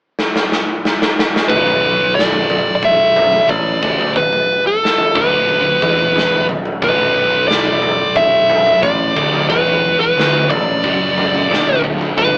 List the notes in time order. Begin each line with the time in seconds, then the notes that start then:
0.19 snare
0.36 snare
0.52 snare
0.85 snare
1.02 snare
1.19 snare
1.36 snare
1.49 B0 B1 B4, kick, floor tom
1.67 floor tom
2.15 D5
2.19 snare
2.33 floor tom
2.50 floor tom, mid tom
2.76 D5
2.83 E5, kick, floor tom
3.16 floor tom, mid tom
3.32 floor tom
3.49 A1 A2 D5, kick
3.82 D1 D2, kick, floor tom
3.99 mid tom
4.16 B4, kick, floor tom
4.33 floor tom
4.67 A4
4.85 snare
4.98 floor tom
5.15 D1 D2 B4, kick, floor tom, mid tom
5.49 floor tom
5.82 E1 E2, kick, floor tom, mid tom
5.99 floor tom
6.16 snare, mid tom
6.32 floor tom
6.48 muted distorted electric guitar stroke, muted picked electric bass stroke, floor tom
6.65 mid tom
6.82 B0 B1 B4, kick, floor tom
6.98 floor tom
7.48 D5, snare
7.65 floor tom
7.82 floor tom, mid tom
8.15 E5, kick, floor tom
8.50 floor tom, mid tom
8.66 floor tom
8.83 A1 A2 D5, kick
9.15 D1 D2, kick, floor tom
9.34 mid tom
9.50 E1 E2 B4, kick, floor tom
9.66 floor tom
10.00 B4
10.16 D1 D2, snare
10.34 floor tom
10.50 A1 A2 D5, kick, floor tom, mid tom
10.84 F#1 F#2, kick, floor tom
11.18 floor tom, mid tom
11.34 floor tom
11.51 D1 D2, snare, mid tom
11.67 floor tom
11.84 floor tom
12.01 mid tom
12.18 G1 G2 B4, kick, floor tom